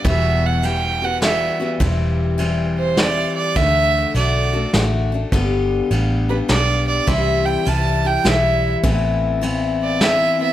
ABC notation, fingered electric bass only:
X:1
M:3/4
L:1/8
Q:"Swing" 1/4=102
K:Clyd
V:1 name="Fingered electric bass" clef=bass
E,,,6 | E,,,6 | D,,2 B,,,2 A,,,2 | G,,,2 A,,,2 B,,,2 |
C,,2 C,,2 B,,,2 | A,,,6 |]